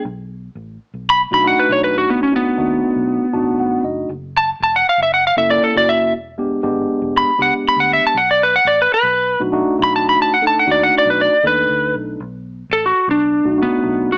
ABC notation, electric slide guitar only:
X:1
M:4/4
L:1/16
Q:1/4=119
K:E
V:1 name="Electric slide guitar"
z8 b z b f B c B F | B, C B,12 z2 | z2 a z a f ^e =e f ^e =e =d A d e2 | z8 b2 f z b f e a |
f =d B f d B B4 z3 b a b | a f a f =d f d B d2 B4 z2 | z4 A F2 =D4 B,4 F |]